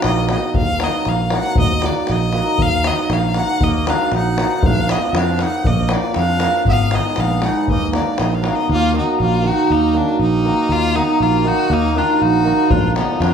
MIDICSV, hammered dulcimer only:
0, 0, Header, 1, 2, 480
1, 0, Start_track
1, 0, Key_signature, -6, "minor"
1, 0, Tempo, 508906
1, 521, Time_signature, 2, 2, 24, 8
1, 6758, Tempo, 503778
1, 12640, End_track
2, 0, Start_track
2, 0, Title_t, "Hammered dulcimer"
2, 0, Program_c, 0, 15
2, 0, Note_on_c, 0, 51, 76
2, 0, Note_on_c, 0, 54, 70
2, 251, Note_off_c, 0, 51, 0
2, 257, Note_off_c, 0, 54, 0
2, 262, Note_on_c, 0, 51, 60
2, 268, Note_on_c, 0, 54, 65
2, 272, Note_on_c, 0, 58, 58
2, 276, Note_on_c, 0, 66, 83
2, 278, Note_on_c, 0, 63, 58
2, 460, Note_off_c, 0, 58, 0
2, 462, Note_off_c, 0, 66, 0
2, 463, Note_off_c, 0, 63, 0
2, 567, Note_off_c, 0, 54, 0
2, 568, Note_off_c, 0, 51, 0
2, 741, Note_on_c, 0, 54, 68
2, 754, Note_on_c, 0, 58, 64
2, 756, Note_on_c, 0, 63, 69
2, 760, Note_on_c, 0, 66, 80
2, 943, Note_off_c, 0, 58, 0
2, 943, Note_off_c, 0, 63, 0
2, 945, Note_off_c, 0, 66, 0
2, 1216, Note_off_c, 0, 54, 0
2, 1227, Note_on_c, 0, 54, 72
2, 1236, Note_on_c, 0, 58, 66
2, 1238, Note_on_c, 0, 63, 63
2, 1244, Note_on_c, 0, 66, 72
2, 1424, Note_off_c, 0, 58, 0
2, 1425, Note_off_c, 0, 63, 0
2, 1428, Note_off_c, 0, 66, 0
2, 1698, Note_off_c, 0, 54, 0
2, 1706, Note_on_c, 0, 54, 69
2, 1710, Note_on_c, 0, 58, 60
2, 1715, Note_on_c, 0, 63, 57
2, 1722, Note_on_c, 0, 66, 74
2, 1902, Note_off_c, 0, 58, 0
2, 1903, Note_off_c, 0, 63, 0
2, 1908, Note_off_c, 0, 66, 0
2, 2176, Note_off_c, 0, 54, 0
2, 2187, Note_on_c, 0, 54, 71
2, 2194, Note_on_c, 0, 58, 72
2, 2196, Note_on_c, 0, 63, 69
2, 2202, Note_on_c, 0, 66, 80
2, 2385, Note_off_c, 0, 58, 0
2, 2385, Note_off_c, 0, 63, 0
2, 2389, Note_off_c, 0, 66, 0
2, 2655, Note_off_c, 0, 54, 0
2, 2666, Note_on_c, 0, 54, 68
2, 2674, Note_on_c, 0, 58, 70
2, 2677, Note_on_c, 0, 63, 75
2, 2685, Note_on_c, 0, 66, 85
2, 2865, Note_off_c, 0, 58, 0
2, 2866, Note_off_c, 0, 63, 0
2, 2870, Note_off_c, 0, 66, 0
2, 3144, Note_off_c, 0, 54, 0
2, 3155, Note_on_c, 0, 54, 58
2, 3159, Note_on_c, 0, 58, 67
2, 3166, Note_on_c, 0, 63, 64
2, 3173, Note_on_c, 0, 66, 82
2, 3347, Note_off_c, 0, 58, 0
2, 3351, Note_off_c, 0, 63, 0
2, 3354, Note_off_c, 0, 66, 0
2, 3617, Note_off_c, 0, 54, 0
2, 3629, Note_on_c, 0, 54, 75
2, 3636, Note_on_c, 0, 58, 67
2, 3642, Note_on_c, 0, 63, 66
2, 3646, Note_on_c, 0, 66, 83
2, 3826, Note_off_c, 0, 58, 0
2, 3829, Note_off_c, 0, 63, 0
2, 3831, Note_off_c, 0, 66, 0
2, 4101, Note_off_c, 0, 54, 0
2, 4113, Note_on_c, 0, 54, 60
2, 4119, Note_on_c, 0, 58, 57
2, 4123, Note_on_c, 0, 63, 58
2, 4131, Note_on_c, 0, 66, 76
2, 4307, Note_off_c, 0, 58, 0
2, 4309, Note_off_c, 0, 63, 0
2, 4313, Note_off_c, 0, 66, 0
2, 4415, Note_off_c, 0, 54, 0
2, 4587, Note_on_c, 0, 53, 66
2, 4592, Note_on_c, 0, 58, 59
2, 4601, Note_on_c, 0, 62, 63
2, 4603, Note_on_c, 0, 65, 72
2, 4783, Note_off_c, 0, 58, 0
2, 4788, Note_off_c, 0, 62, 0
2, 4788, Note_off_c, 0, 65, 0
2, 5057, Note_off_c, 0, 53, 0
2, 5068, Note_on_c, 0, 53, 58
2, 5076, Note_on_c, 0, 58, 59
2, 5079, Note_on_c, 0, 62, 65
2, 5086, Note_on_c, 0, 65, 64
2, 5265, Note_off_c, 0, 58, 0
2, 5266, Note_off_c, 0, 62, 0
2, 5270, Note_off_c, 0, 65, 0
2, 5534, Note_off_c, 0, 53, 0
2, 5545, Note_on_c, 0, 53, 71
2, 5549, Note_on_c, 0, 58, 66
2, 5555, Note_on_c, 0, 62, 64
2, 5561, Note_on_c, 0, 65, 66
2, 5740, Note_off_c, 0, 58, 0
2, 5743, Note_off_c, 0, 62, 0
2, 5746, Note_off_c, 0, 65, 0
2, 6013, Note_off_c, 0, 53, 0
2, 6024, Note_on_c, 0, 53, 63
2, 6028, Note_on_c, 0, 58, 72
2, 6036, Note_on_c, 0, 62, 65
2, 6040, Note_on_c, 0, 65, 70
2, 6219, Note_off_c, 0, 58, 0
2, 6223, Note_off_c, 0, 62, 0
2, 6225, Note_off_c, 0, 65, 0
2, 6329, Note_off_c, 0, 53, 0
2, 6516, Note_on_c, 0, 56, 67
2, 6523, Note_on_c, 0, 59, 58
2, 6531, Note_on_c, 0, 63, 65
2, 6536, Note_on_c, 0, 68, 91
2, 6705, Note_off_c, 0, 59, 0
2, 6709, Note_off_c, 0, 63, 0
2, 6711, Note_off_c, 0, 68, 0
2, 6978, Note_off_c, 0, 56, 0
2, 6989, Note_on_c, 0, 56, 70
2, 6997, Note_on_c, 0, 59, 66
2, 7004, Note_on_c, 0, 63, 71
2, 7013, Note_on_c, 0, 68, 81
2, 7183, Note_off_c, 0, 59, 0
2, 7187, Note_off_c, 0, 63, 0
2, 7192, Note_off_c, 0, 68, 0
2, 7289, Note_off_c, 0, 56, 0
2, 7469, Note_on_c, 0, 54, 73
2, 7479, Note_on_c, 0, 58, 59
2, 7482, Note_on_c, 0, 63, 67
2, 7485, Note_on_c, 0, 66, 75
2, 7665, Note_off_c, 0, 58, 0
2, 7667, Note_off_c, 0, 63, 0
2, 7668, Note_off_c, 0, 66, 0
2, 7944, Note_off_c, 0, 54, 0
2, 7955, Note_on_c, 0, 54, 67
2, 7959, Note_on_c, 0, 58, 61
2, 7965, Note_on_c, 0, 63, 66
2, 7975, Note_on_c, 0, 66, 69
2, 8146, Note_off_c, 0, 58, 0
2, 8149, Note_off_c, 0, 63, 0
2, 8153, Note_off_c, 0, 66, 0
2, 8252, Note_off_c, 0, 54, 0
2, 8443, Note_on_c, 0, 51, 74
2, 8447, Note_on_c, 0, 54, 67
2, 8451, Note_on_c, 0, 58, 63
2, 8459, Note_on_c, 0, 63, 63
2, 8463, Note_on_c, 0, 66, 84
2, 8632, Note_off_c, 0, 58, 0
2, 8636, Note_off_c, 0, 63, 0
2, 8638, Note_off_c, 0, 66, 0
2, 8903, Note_off_c, 0, 51, 0
2, 8910, Note_off_c, 0, 54, 0
2, 8914, Note_on_c, 0, 51, 71
2, 8921, Note_on_c, 0, 54, 67
2, 8921, Note_on_c, 0, 58, 69
2, 8929, Note_on_c, 0, 63, 59
2, 8933, Note_on_c, 0, 66, 76
2, 9107, Note_off_c, 0, 58, 0
2, 9111, Note_off_c, 0, 63, 0
2, 9113, Note_off_c, 0, 66, 0
2, 9383, Note_off_c, 0, 51, 0
2, 9391, Note_off_c, 0, 54, 0
2, 9395, Note_on_c, 0, 51, 76
2, 9402, Note_on_c, 0, 54, 72
2, 9406, Note_on_c, 0, 58, 70
2, 9409, Note_on_c, 0, 63, 73
2, 9414, Note_on_c, 0, 66, 77
2, 9589, Note_off_c, 0, 58, 0
2, 9591, Note_off_c, 0, 63, 0
2, 9593, Note_off_c, 0, 66, 0
2, 9877, Note_off_c, 0, 51, 0
2, 9879, Note_off_c, 0, 54, 0
2, 9888, Note_on_c, 0, 51, 72
2, 9891, Note_on_c, 0, 54, 69
2, 9899, Note_on_c, 0, 58, 59
2, 9902, Note_on_c, 0, 63, 68
2, 9908, Note_on_c, 0, 66, 80
2, 10076, Note_off_c, 0, 58, 0
2, 10077, Note_off_c, 0, 63, 0
2, 10080, Note_off_c, 0, 66, 0
2, 10356, Note_off_c, 0, 51, 0
2, 10360, Note_off_c, 0, 54, 0
2, 10367, Note_on_c, 0, 51, 84
2, 10371, Note_on_c, 0, 54, 63
2, 10374, Note_on_c, 0, 58, 68
2, 10382, Note_on_c, 0, 63, 61
2, 10388, Note_on_c, 0, 66, 72
2, 10552, Note_off_c, 0, 58, 0
2, 10557, Note_off_c, 0, 63, 0
2, 10560, Note_off_c, 0, 66, 0
2, 10816, Note_off_c, 0, 51, 0
2, 10823, Note_off_c, 0, 54, 0
2, 10828, Note_on_c, 0, 51, 65
2, 10835, Note_on_c, 0, 54, 78
2, 10842, Note_on_c, 0, 58, 74
2, 10844, Note_on_c, 0, 63, 72
2, 10846, Note_on_c, 0, 66, 80
2, 11026, Note_off_c, 0, 58, 0
2, 11027, Note_off_c, 0, 63, 0
2, 11028, Note_off_c, 0, 66, 0
2, 11307, Note_off_c, 0, 51, 0
2, 11314, Note_off_c, 0, 54, 0
2, 11319, Note_on_c, 0, 51, 78
2, 11324, Note_on_c, 0, 54, 61
2, 11325, Note_on_c, 0, 58, 69
2, 11328, Note_on_c, 0, 63, 66
2, 11336, Note_on_c, 0, 66, 90
2, 11507, Note_off_c, 0, 58, 0
2, 11508, Note_off_c, 0, 63, 0
2, 11513, Note_off_c, 0, 66, 0
2, 11777, Note_off_c, 0, 51, 0
2, 11785, Note_off_c, 0, 54, 0
2, 11789, Note_on_c, 0, 51, 77
2, 11794, Note_on_c, 0, 54, 67
2, 11801, Note_on_c, 0, 58, 69
2, 11802, Note_on_c, 0, 63, 63
2, 11810, Note_on_c, 0, 66, 86
2, 11983, Note_off_c, 0, 63, 0
2, 11984, Note_off_c, 0, 58, 0
2, 11988, Note_off_c, 0, 66, 0
2, 12088, Note_off_c, 0, 51, 0
2, 12088, Note_off_c, 0, 54, 0
2, 12272, Note_on_c, 0, 50, 64
2, 12274, Note_on_c, 0, 53, 64
2, 12280, Note_on_c, 0, 58, 60
2, 12283, Note_on_c, 0, 62, 69
2, 12288, Note_on_c, 0, 65, 81
2, 12463, Note_off_c, 0, 58, 0
2, 12464, Note_off_c, 0, 62, 0
2, 12467, Note_off_c, 0, 65, 0
2, 12640, Note_off_c, 0, 50, 0
2, 12640, Note_off_c, 0, 53, 0
2, 12640, End_track
0, 0, End_of_file